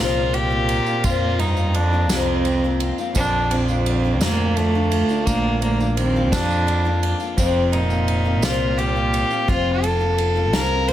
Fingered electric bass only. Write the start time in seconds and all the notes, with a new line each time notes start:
Already playing: C2
1.04 F2
2.10 C2
3.15 A#1
4.21 F2
5.27 A#1
6.32 F2
7.37 F1
8.42 C2
9.48 F1
10.53 C2